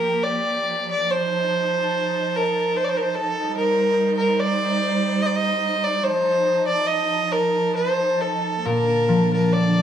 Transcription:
0.00 3.51 F3 medium
0.00 1.05 A#3 medium
0.00 1.05 G4 medium
0.00 0.25 A#4 medium
0.24 0.88 D5 medium
0.91 1.12 D5 medium
1.06 8.61 D#4 medium
1.06 3.51 A5 medium
1.10 2.38 C5 medium
2.36 2.78 A#4 medium
2.77 2.86 C5 medium
2.84 2.91 D5 medium
2.89 2.98 C5 medium
2.97 3.04 A#4 soft
3.03 3.16 C5 medium
3.15 3.55 A4 medium
3.55 6.01 G3 medium
3.55 4.13 A#4 medium
3.55 6.01 C5 medium
4.17 4.40 A#4 medium
4.39 5.24 D5 medium
5.22 5.37 D5 medium
5.22 5.28 D#5 medium
5.36 5.86 D#5 medium
5.84 6.05 D5 medium
6.03 8.63 F3 medium
6.03 6.66 C5 medium
6.03 9.82 A5 medium
6.67 6.88 D5 medium
6.87 7.33 D#5 medium
7.32 7.74 A#4 medium
7.75 8.23 C5 medium
8.21 8.67 A4 medium
8.64 9.82 A#2 medium
8.64 9.82 D3 medium
8.64 9.82 A#3 medium
8.64 9.31 A#4 medium
9.09 9.82 F3 soft
9.33 9.54 A#4 medium
9.53 9.82 D4 soft
9.53 9.82 D5 medium

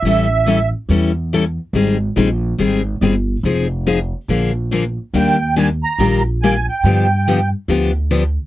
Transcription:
0.00 0.71 A1 medium
0.00 0.69 E5 medium
0.05 0.25 E3 medium
0.05 0.26 G3 medium
0.05 0.26 C#4 medium
0.05 0.26 E4 medium
0.05 0.26 A4 medium
0.46 0.57 E3 medium
0.46 0.58 G3 medium
0.46 0.58 C#4 medium
0.46 0.58 E4 medium
0.46 0.58 A4 medium
0.89 1.57 E2 medium
0.89 1.10 E3 medium
0.89 1.10 G3 medium
0.89 1.11 C#4 medium
0.89 1.11 E4 medium
0.89 1.11 A4 medium
1.33 1.43 E3 medium
1.33 1.43 G3 medium
1.33 1.44 C#4 medium
1.33 1.44 E4 medium
1.33 1.44 A4 medium
1.73 2.07 G#1 medium
1.73 1.95 D#3 medium
1.73 1.95 G3 medium
1.73 1.96 C4 medium
1.73 1.96 D#4 medium
1.73 1.96 G#4 medium
2.16 2.52 A#1 medium
2.16 2.27 D#3 medium
2.16 2.28 G3 medium
2.16 2.28 C4 medium
2.16 2.28 D#4 medium
2.16 2.28 G#4 medium
2.58 2.95 G#1 medium
2.58 2.80 D#3 medium
2.58 2.80 G3 medium
2.58 2.80 C4 medium
2.58 2.80 D#4 medium
2.58 2.81 G#4 medium
3.01 3.37 G1 medium
3.01 3.13 D#3 medium
3.01 3.13 G3 medium
3.01 3.13 C4 medium
3.01 3.13 D#4 loud
3.01 3.14 G#4 medium
3.43 4.11 F1 medium
3.43 3.65 F3 medium
3.43 3.66 C4 medium
3.43 3.66 D#4 medium
3.43 3.66 G#4 medium
3.86 3.97 F3 medium
3.86 3.98 C4 medium
3.86 3.98 D#4 medium
3.86 3.98 G#4 medium
4.28 4.96 A#1 medium
4.28 4.50 D3 medium
4.28 4.50 F3 medium
4.28 4.50 A#3 medium
4.28 4.51 D4 medium
4.28 4.51 G#4 medium
4.71 4.82 D3 medium
4.71 4.83 F3 medium
4.71 4.83 A#3 medium
4.71 4.83 D4 medium
4.71 4.83 G#4 loud
5.14 5.81 D#2 medium
5.14 5.35 D#3 medium
5.14 5.35 G3 medium
5.14 5.35 A#3 medium
5.14 5.35 D4 medium
5.14 5.36 G4 medium
5.14 5.55 G5 medium
5.56 5.67 D#3 medium
5.56 5.67 G3 medium
5.56 5.68 A#3 medium
5.56 5.68 D4 medium
5.56 5.68 G4 medium
5.56 5.69 G#5 medium
5.83 6.22 A#5 loud
5.98 6.66 A#1 medium
5.98 6.20 D#3 medium
5.98 6.20 G3 medium
5.98 6.20 A#3 medium
5.98 6.21 D4 medium
5.98 6.21 G4 medium
6.42 6.53 D#3 medium
6.42 6.54 G3 medium
6.42 6.54 A#3 medium
6.42 6.54 D4 medium
6.42 6.54 G4 medium
6.42 6.66 G#5 medium
6.69 7.49 G5 medium
6.84 7.52 G2 medium
6.84 7.05 D3 medium
6.84 7.06 F3 medium
6.84 7.06 B3 medium
6.84 7.06 D4 medium
6.84 7.06 G4 medium
7.28 7.38 D3 medium
7.28 7.38 F3 medium
7.28 7.38 B3 medium
7.28 7.38 D4 medium
7.28 7.39 G4 medium
7.68 8.36 D2 medium
7.68 7.90 D3 medium
7.68 7.90 F3 medium
7.68 7.90 B3 medium
7.68 7.90 D4 medium
7.68 7.90 G4 medium
8.11 8.22 D3 medium
8.11 8.22 F3 medium
8.11 8.22 B3 medium
8.11 8.22 D4 medium
8.11 8.23 G4 loud

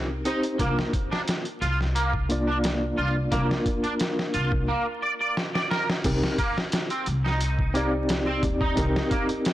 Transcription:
0.00 0.22 C2 medium
0.00 0.21 C4 medium
0.00 0.21 D#4 medium
0.00 0.22 G4 medium
0.00 0.22 A#4 medium
0.25 0.55 C4 medium
0.25 0.42 D#4 medium
0.25 0.55 D#4 medium
0.25 0.56 G4 medium
0.25 0.56 C5 medium
0.25 closed hi-hat medium
0.43 closed hi-hat soft
0.59 0.75 C2 medium
0.59 0.76 A#3 loud
0.59 0.90 A#3 medium
0.59 0.91 D4 medium
0.59 0.91 F4 medium
0.59 0.91 A#4 medium
0.59 kick loud
0.59 closed hi-hat medium
0.79 snare medium
0.93 kick loud
0.93 closed hi-hat medium
1.12 1.20 D4 loud
1.12 snare medium
1.28 snare loud
1.28 closed hi-hat medium
1.45 closed hi-hat soft
1.61 2.95 C2 medium
1.61 1.78 F4 medium
1.61 closed hi-hat medium
1.81 snare soft
1.95 2.12 A#3 loud
1.95 closed hi-hat medium
2.13 kick medium
2.29 3.28 A#3 medium
2.29 3.28 D4 medium
2.29 3.29 F4 medium
2.29 3.29 D5 medium
2.29 closed hi-hat medium
2.47 2.57 D4 loud
2.64 snare loud
2.64 closed hi-hat medium
2.98 3.28 C2 medium
2.98 3.15 F4 medium
3.31 3.48 C2 loud
3.31 4.68 A#3 medium
3.31 3.49 A#3 loud
3.31 4.68 D4 medium
3.31 4.69 F4 medium
3.31 4.69 A#4 medium
3.31 kick loud
3.31 closed hi-hat medium
3.51 snare medium
3.66 kick medium
3.66 closed hi-hat medium
3.83 3.93 D4 medium
3.83 closed hi-hat soft
3.99 snare loud
3.99 closed hi-hat medium
4.19 snare soft
4.34 4.68 C2 medium
4.34 4.51 F4 medium
4.34 closed hi-hat medium
4.52 kick medium
4.68 4.85 A#3 loud
5.02 5.13 D5 medium
5.21 5.35 D5 medium
5.37 snare medium
5.54 5.69 D5 medium
5.54 snare medium
5.71 5.87 A#4 loud
5.71 snare medium
5.89 snare medium
6.04 6.20 C2 loud
6.04 6.36 C4 medium
6.04 6.36 D#4 medium
6.04 6.36 G4 medium
6.04 6.36 A#4 medium
6.04 kick loud
6.04 closed hi-hat medium
6.04 crash medium
6.24 snare medium
6.38 6.56 A#3 medium
6.38 kick medium
6.38 closed hi-hat medium
6.58 snare medium
6.72 snare loud
6.72 closed hi-hat medium
6.90 7.06 C4 medium
6.90 closed hi-hat soft
7.06 8.40 C2 medium
7.06 closed hi-hat medium
7.24 7.73 D#4 medium
7.24 snare soft
7.40 closed hi-hat medium
7.59 kick loud
7.74 7.92 A#3 medium
7.74 8.73 C4 medium
7.74 8.73 D#4 medium
7.74 8.74 G4 medium
7.74 8.74 D5 loud
7.74 closed hi-hat medium
8.09 snare loud
8.09 closed hi-hat medium
8.26 8.42 C4 medium
8.43 8.73 D#2 medium
8.43 kick loud
8.43 closed hi-hat medium
8.61 9.09 D#4 medium
8.61 kick medium
8.76 8.93 C2 loud
8.76 9.53 C4 medium
8.76 9.53 D#4 medium
8.76 9.53 G4 medium
8.76 9.53 A#4 medium
8.76 kick loud
8.76 closed hi-hat medium
8.96 snare medium
9.11 9.28 A#3 medium
9.11 kick loud
9.11 closed hi-hat medium
9.29 closed hi-hat soft
9.45 snare loud
9.45 closed hi-hat medium

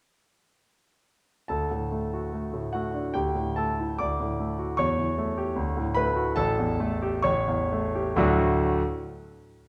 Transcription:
1.48 3.10 D2 soft
1.48 2.69 A4 soft
1.48 2.73 A5 medium
1.71 2.04 A2 soft
1.92 2.25 A3 soft
2.13 2.45 F#4 soft
2.33 2.65 A3 soft
2.54 2.86 A2 soft
2.73 3.07 A3 soft
2.73 3.12 F#4 soft
2.73 3.14 F#5 medium
2.94 3.14 D4 soft
3.14 3.98 D2 soft
3.14 3.54 G4 soft
3.14 3.57 G5 medium
3.35 3.70 A2 soft
3.56 3.92 A3 soft
3.56 3.97 A4 soft
3.56 3.99 A5 medium
3.80 4.00 E4 soft
3.99 4.77 D2 soft
3.99 4.75 D5 soft
3.99 4.79 D6 medium
4.20 4.52 A2 soft
4.40 4.71 A3 soft
4.59 4.79 F#4 soft
4.77 5.55 E2 soft
4.77 5.93 C#5 medium
4.77 5.96 C#6 medium
4.98 5.30 E3 soft
5.18 5.50 A3 soft
5.38 5.58 G4 soft
5.56 6.34 D2 medium
5.77 6.09 A2 soft
5.95 6.29 A3 soft
5.95 6.34 B4 medium
5.95 6.36 B5 medium
6.16 6.37 F#4 soft
6.36 7.22 A1 medium
6.36 7.20 A4 medium
6.36 7.24 A5 medium
6.58 6.93 E2 medium
6.80 7.16 A3 soft
7.02 7.25 G4 soft
7.22 8.15 A1 medium
7.22 8.13 C#5 medium
7.22 8.17 C#6 medium
7.48 7.86 E2 soft
7.72 8.09 A3 soft
7.95 8.18 G4 soft
8.16 8.64 D2 medium
8.16 8.65 A2 medium
8.16 8.65 F#3 medium
8.16 8.65 A3 medium
8.16 8.65 D4 medium
8.16 8.65 F#4 medium
8.16 8.65 D6 medium

